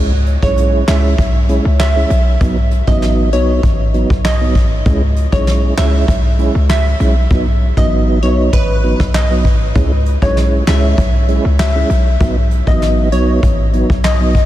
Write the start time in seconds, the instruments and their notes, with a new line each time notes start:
Already playing: 808-style bass C#2, tonewheel organ G#3 C#4 E4
0.26 closed hi-hat
0.42 808-style bass B1, tonewheel organ G#3 C#4 E4, synth pluck C#5, kick
0.57 closed hi-hat
0.88 808-style bass C#2, tonewheel organ G#3 C#4 E4, synth pluck E5, snare, clap
1.18 808-style bass B1, kick, closed hi-hat
1.49 tonewheel organ G#3 C#4 E4, closed hi-hat
1.65 808-style bass C#2
1.80 synth pluck E5, snare, clap, closed hi-hat
1.96 tonewheel organ G#3 C#4 E4
2.10 808-style bass B1, closed hi-hat
2.41 808-style bass B1, tonewheel organ F#3 B3 D#4, kick, closed hi-hat
2.71 closed hi-hat
2.87 808-style bass A1, tonewheel organ F#3 B3 D#4, synth pluck D#5, kick
3.02 snare, closed hi-hat
3.33 808-style bass B1, tonewheel organ F#3 B3 D#4, synth pluck C#5, closed hi-hat
3.63 808-style bass A1, kick, closed hi-hat
3.94 tonewheel organ F#3 B3 D#4, closed hi-hat
4.10 808-style bass B1, kick
4.25 synth pluck D#5, snare, clap, closed hi-hat
4.41 tonewheel organ F#3 B3 D#4
4.55 808-style bass A1, kick, closed hi-hat
4.86 808-style bass C#2, tonewheel organ G#3 C#4 E4, kick, closed hi-hat
5.16 closed hi-hat
5.32 808-style bass B1, tonewheel organ G#3 C#4 E4, synth pluck C#5, kick
5.47 snare, closed hi-hat
5.77 808-style bass C#2, tonewheel organ G#3 C#4 E4, synth pluck E5, snare, clap
6.08 808-style bass B1, kick, closed hi-hat
6.39 tonewheel organ G#3 C#4 E4, closed hi-hat
6.55 808-style bass C#2
6.69 synth pluck E5, snare, clap, closed hi-hat
7.00 808-style bass B1, tonewheel organ G#3 C#4 E4, closed hi-hat
7.30 808-style bass B1, tonewheel organ F#3 B3 D#4, kick
7.77 808-style bass A1, tonewheel organ F#3 B3 D#4, synth pluck D#5, kick
8.22 808-style bass B1, tonewheel organ F#3 B3 D#4, synth pluck C#5
8.53 808-style bass A1, synth pluck B4, kick
8.83 tonewheel organ F#3 B3 D#4
9.00 808-style bass B1, kick, cross-stick
9.14 synth pluck D#5, snare, clap
9.30 tonewheel organ F#3 B3 D#4
9.45 808-style bass A1, kick
9.75 808-style bass C#2, tonewheel organ G#3 C#4 E4, kick, closed hi-hat
10.06 closed hi-hat
10.22 808-style bass B1, tonewheel organ G#3 C#4 E4, synth pluck C#5, kick
10.37 snare, closed hi-hat
10.67 808-style bass C#2, tonewheel organ G#3 C#4 E4, synth pluck E5, snare, clap
10.98 808-style bass B1, kick, closed hi-hat
11.28 tonewheel organ G#3 C#4 E4, closed hi-hat
11.45 808-style bass C#2
11.59 synth pluck E5, snare, clap, closed hi-hat
11.75 tonewheel organ G#3 C#4 E4
11.90 808-style bass B1, closed hi-hat
12.20 808-style bass B1, tonewheel organ F#3 B3 D#4, kick, closed hi-hat
12.51 closed hi-hat
12.67 808-style bass A1, tonewheel organ F#3 B3 D#4, synth pluck D#5, kick
12.82 snare, closed hi-hat
13.12 808-style bass B1, tonewheel organ F#3 B3 D#4, synth pluck C#5, closed hi-hat
13.43 808-style bass A1, kick, closed hi-hat
13.73 tonewheel organ F#3 B3 D#4, closed hi-hat
13.90 808-style bass B1, kick
14.04 synth pluck D#5, snare, clap, closed hi-hat
14.20 tonewheel organ F#3 B3 D#4
14.35 808-style bass A1, kick, closed hi-hat